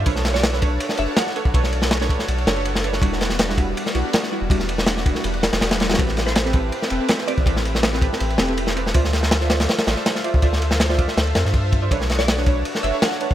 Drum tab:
RD |x---x---x---x---x---x---x---x---|x---x---x---x---x-x-x-x-x---x---|x---x---x---x---x---x---x-------|x---x---x---x---x-x-x-x-x-x-x-xx|
SD |--o-o-o-o-o-------o-----o-o-----|--o---o-o-o---o-----o-----o---o-|--o-o-o-o-o-------o-----o-o-----|--o---o-o-o---o-----o-o-o-o-o-oo|
BD |o-----------o-----------------o-|o-----------o-------------------|o-----------o-------------------|o-----------o-------------------|

RD |x---x---x---x---x---x---x---x---|x---x---x---x---x-x-x-x-x---x---|x---x---x---x-x-x-x-x---x---x---|x---x---x---x---x-x-x---x---x---|
SD |--o-o-o-o-o-------o-----o-o-----|--o---o-o-o---o-----o-----o---o-|--o-o-o-o-o-o-o-o-o-o-o-o-o-----|--o---o-o-o---o-o---o-o---------|
BD |o-----------o-----------------o-|o-----------o-------------------|o-----------------------------o-|o-----------o-----------o---o---|

RD |x---x---x---x---x---x---x---x---|
SD |--o-o-o-o-o-------o-----o-o-----|
BD |o-----------o-----------------o-|